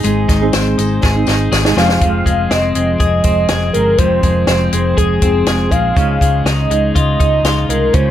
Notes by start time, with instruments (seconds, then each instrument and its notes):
Already playing: clean electric guitar C4 D#4 G#4
0.03 fingered electric bass G#1, steel-string acoustic guitar G#3 C4 D#4 G#4, closed hi-hat, tambourine
0.28 fingered electric bass G#1, clean electric guitar D#4, kick, snare, closed hi-hat
0.41 steel-string acoustic guitar G#2 D#3 G#3 C4 D#4 G#4
0.53 fingered electric bass G#1, clean electric guitar C4, snare, closed hi-hat, tambourine
0.78 fingered electric bass G#1, steel-string acoustic guitar G#3 C4 D#4 G#4, closed hi-hat, tambourine
1.03 fingered electric bass G#1, clean electric guitar G#4, kick, snare
1.15 steel-string acoustic guitar G#3 C4 D#4 G#4
1.27 fingered electric bass G#1, clean electric guitar D#4, snare, tambourine
1.52 fingered electric bass G#1, clean electric guitar G#4, snare, tambourine
1.64 steel-string acoustic guitar G#3 C4 D#4 G#4, snare
1.76 fingered electric bass F1, steel-string acoustic guitar F2 C3 D#3 G#3 C4 G#4, clean electric guitar F3, soft synth lead F5, snare, tambourine
1.89 snare
2.01 fingered electric bass F1, steel-string acoustic guitar F2 C3 D#3 G#3 C4 F4, kick, closed hi-hat
2.25 fingered electric bass F1, steel-string acoustic guitar D#3 G#3 C4, kick, closed hi-hat
2.50 fingered electric bass F1, clean electric guitar C4, soft synth lead D#5, snare, closed hi-hat
2.74 fingered electric bass F1, steel-string acoustic guitar D#3 G#3 C4 F4, closed hi-hat
2.99 fingered electric bass F1, clean electric guitar G#4, soft synth lead D#5, kick, closed hi-hat
3.23 fingered electric bass F1, steel-string acoustic guitar D#3 G#3 C4 F4, kick, closed hi-hat
3.48 fingered electric bass F1, steel-string acoustic guitar D#3 G#3 C4 F4, clean electric guitar G#4, snare, closed hi-hat
3.72 fingered electric bass G1, steel-string acoustic guitar D#3 G#3 C4 F4, soft synth lead A#4, closed hi-hat
3.97 fingered electric bass F1, steel-string acoustic guitar F2 C3 D#3 G#3 C4 F4, soft synth lead C5, kick, closed hi-hat
4.21 fingered electric bass F1, steel-string acoustic guitar D#3 G#3 C4, kick, closed hi-hat
4.47 fingered electric bass F1, clean electric guitar C4, soft synth lead C5, snare, closed hi-hat
4.72 fingered electric bass F1, steel-string acoustic guitar D#3 G#3 C4 F4, closed hi-hat
4.97 fingered electric bass F1, clean electric guitar G#4, soft synth lead G#4, kick, closed hi-hat
5.21 fingered electric bass F1, steel-string acoustic guitar D#3 G#3 C4 F4, soft synth lead G#4, kick, closed hi-hat
5.46 fingered electric bass F1, steel-string acoustic guitar D#3 G#3 C4 F4, clean electric guitar G#4, snare, closed hi-hat
5.71 fingered electric bass A#1, steel-string acoustic guitar D#3 G#3 C4 F4, soft synth lead F5, kick, closed hi-hat
5.96 fingered electric bass C#2, steel-string acoustic guitar C#3 F3 G#3 D#4 F4, kick, closed hi-hat
6.21 fingered electric bass C#2, steel-string acoustic guitar F3 G#3 D#4 F4, kick, closed hi-hat
6.45 fingered electric bass C#2, clean electric guitar D#4, soft synth lead D#5, snare, closed hi-hat
6.70 fingered electric bass C#2, steel-string acoustic guitar F3 G#3 D#4 F4, closed hi-hat
6.95 fingered electric bass C#2, clean electric guitar F4, soft synth lead D#5, kick, closed hi-hat
7.19 fingered electric bass C#2, steel-string acoustic guitar F3 G#3 D#4 F4, kick, closed hi-hat
7.43 fingered electric bass C#2, steel-string acoustic guitar F3 G#3 D#4 F4, snare, closed hi-hat
7.68 fingered electric bass C2, steel-string acoustic guitar F3 G#3 D#4 F4, soft synth lead A#4, closed hi-hat
7.93 fingered electric bass C#2, steel-string acoustic guitar C#3 F3 G#3 D#4 F4, soft synth lead C5, kick, closed hi-hat